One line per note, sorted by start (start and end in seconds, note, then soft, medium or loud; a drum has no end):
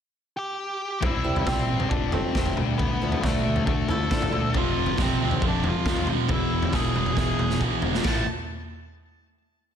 0.37 0.99 G4 medium
0.37 1.05 G5 loud
1.01 1.19 C2 medium
1.01 1.44 C3 medium
1.01 1.44 G3 medium
1.01 1.44 C4 medium
1.01 kick loud
1.01 floor tom medium
1.05 1.45 E4 medium
1.05 1.50 E5 loud
1.24 1.42 C2 medium
1.24 1.45 C3 medium
1.24 1.46 G3 medium
1.24 1.46 C4 medium
1.24 1.46 E4 medium
1.36 floor tom medium
1.45 1.63 C2 medium
1.45 1.67 C3 medium
1.45 1.76 C3 medium
1.45 1.68 G3 medium
1.45 1.76 G3 medium
1.45 1.68 C4 medium
1.45 1.76 C4 medium
1.45 1.89 C4 medium
1.45 1.76 E4 medium
1.45 1.89 C5 medium
1.45 kick loud
1.45 snare medium
1.45 mid tom medium
1.68 1.86 A1 medium
1.68 1.90 C3 medium
1.68 1.90 G3 medium
1.68 1.90 C4 medium
1.80 floor tom medium
1.89 2.23 F1 medium
1.89 2.32 F2 medium
1.89 2.32 C3 medium
1.89 2.34 F3 loud
1.89 2.11 D4 medium
1.89 2.13 D5 medium
1.89 kick loud
2.12 2.34 C3 medium
2.12 2.35 F3 medium
2.12 2.35 A3 medium
2.12 2.35 C4 medium
2.12 2.55 C4 medium
2.12 2.55 C5 medium
2.12 floor tom medium
2.34 2.62 F1 medium
2.34 2.55 F2 medium
2.34 2.55 C3 medium
2.34 2.58 C3 medium
2.34 2.56 F3 medium
2.34 2.58 F3 medium
2.34 2.58 A3 medium
2.34 2.58 C4 medium
2.34 kick loud
2.34 snare medium
2.46 floor tom medium
2.56 2.77 D3 loud
2.56 2.78 A3 loud
2.56 2.79 D4 loud
2.56 mid tom medium
2.60 2.75 D2 medium
2.78 2.95 D2 medium
2.78 3.22 D3 medium
2.78 3.23 A3 medium
2.78 3.20 B3 medium
2.78 3.23 D4 loud
2.78 3.24 B4 medium
2.78 kick loud
2.78 floor tom medium
3.02 3.18 D2 medium
3.02 3.22 D3 medium
3.02 3.23 F3 medium
3.02 3.23 A3 medium
3.02 3.23 E4 medium
3.12 floor tom medium
3.22 3.40 D2 loud
3.22 3.42 D3 medium
3.22 3.52 D3 medium
3.22 3.53 F3 medium
3.22 3.64 A3 medium
3.22 3.44 A3 medium
3.22 3.53 A3 medium
3.22 3.43 D4 medium
3.22 3.53 E4 medium
3.22 3.64 A4 medium
3.22 kick loud
3.22 snare medium
3.22 mid tom medium
3.44 3.62 D2 medium
3.44 3.63 D3 medium
3.44 3.64 A3 medium
3.44 3.64 D4 medium
3.56 floor tom medium
3.64 3.83 D2 medium
3.64 4.08 D3 medium
3.64 4.10 A3 loud
3.64 3.88 A3 medium
3.64 4.09 D4 medium
3.64 kick loud
3.69 3.88 A4 medium
3.89 4.06 D2 medium
3.89 4.10 D3 medium
3.89 4.10 F3 medium
3.89 4.11 A3 medium
3.89 4.11 E4 medium
3.89 4.51 A4 medium
3.89 4.58 A5 medium
3.89 floor tom medium
4.10 4.27 A2 medium
4.10 4.31 D3 medium
4.10 4.40 D3 medium
4.10 4.40 F3 medium
4.10 4.32 A3 medium
4.10 4.40 A3 medium
4.10 4.32 D4 medium
4.10 4.41 E4 medium
4.10 kick loud
4.10 snare medium
4.22 floor tom medium
4.32 4.50 D2 medium
4.32 4.53 D3 medium
4.32 4.53 A3 medium
4.32 4.54 D4 loud
4.32 mid tom medium
4.52 4.71 F1 medium
4.52 4.97 F2 medium
4.52 4.97 C3 loud
4.52 4.98 F3 loud
4.52 kick loud
4.52 floor tom medium
4.57 4.98 F2 medium
4.57 4.98 F4 medium
4.57 4.97 F5 loud
4.78 4.93 F1 medium
4.86 floor tom medium
4.98 5.14 F1 medium
4.98 5.17 F2 medium
4.98 5.18 C3 medium
4.98 5.19 F3 loud
4.98 5.41 C4 medium
4.98 kick loud
4.98 snare medium
4.98 mid tom medium
5.02 5.41 C5 medium
5.18 5.37 D2 medium
5.18 5.40 F2 medium
5.18 5.41 C3 medium
5.18 5.41 F3 loud
5.31 floor tom medium
5.41 5.74 F1 medium
5.41 5.85 F2 medium
5.41 5.85 C3 loud
5.41 5.85 F3 loud
5.41 kick loud
5.48 5.66 D4 medium
5.48 5.68 D5 medium
5.64 floor tom medium
5.69 6.08 F4 medium
5.69 6.08 F5 medium
5.85 6.17 D#2 medium
5.85 6.06 F2 medium
5.85 6.07 C3 medium
5.85 6.08 F3 loud
5.85 kick loud
5.85 snare medium
5.97 floor tom medium
6.07 6.28 F2 medium
6.07 6.29 C3 loud
6.07 6.29 F3 loud
6.07 mid tom medium
6.29 6.45 E1 loud
6.29 6.71 E2 loud
6.29 6.70 B2 medium
6.29 6.71 E3 loud
6.29 6.72 E4 medium
6.29 kick loud
6.29 floor tom medium
6.34 6.77 E5 medium
6.52 6.68 E1 medium
6.62 floor tom medium
6.71 6.89 E1 medium
6.71 6.93 E2 medium
6.71 6.94 B2 loud
6.71 6.94 E3 loud
6.71 7.15 G#4 medium
6.71 7.18 G#5 medium
6.71 kick loud
6.71 snare medium
6.71 mid tom medium
6.94 7.11 E1 medium
6.94 7.14 E2 medium
6.94 7.15 B2 medium
6.94 7.15 E3 medium
6.94 mid tom medium
7.06 floor tom medium
7.16 7.33 E1 medium
7.16 7.59 E2 medium
7.16 7.60 B2 loud
7.16 7.60 E3 medium
7.16 7.59 G#5 medium
7.16 kick loud
7.16 snare medium
7.21 7.60 G#4 medium
7.39 7.55 E1 medium
7.39 mid tom medium
7.50 snare medium
7.60 7.77 B1 medium
7.60 7.79 E2 medium
7.60 7.80 B2 medium
7.60 7.80 E3 medium
7.60 kick loud
7.80 7.99 E1 medium
7.80 8.02 E2 loud
7.80 8.02 B2 medium
7.80 8.02 E3 loud
7.80 floor tom medium
7.95 snare medium
8.02 8.25 A1 loud
8.02 8.21 A2 loud
8.02 8.22 E3 loud
8.02 8.22 A3 loud
8.02 kick loud
8.02 snare medium
8.02 crash medium
8.07 8.27 A5 medium